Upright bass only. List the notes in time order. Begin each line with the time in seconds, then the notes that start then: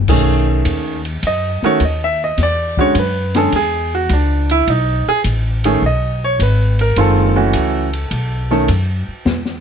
0.08 B1
0.65 D#2
1.23 F#2
1.62 muted upright bass stroke
1.80 D#2
2.38 E2
2.95 F#2
3.52 E2
4.09 C#2
4.67 B1
5.07 muted upright bass stroke
5.24 A1
5.82 B1
6.39 G#1
6.96 F#1
7.54 C#2
8.11 B1
8.69 F#2
9.08 muted upright bass stroke
9.26 E2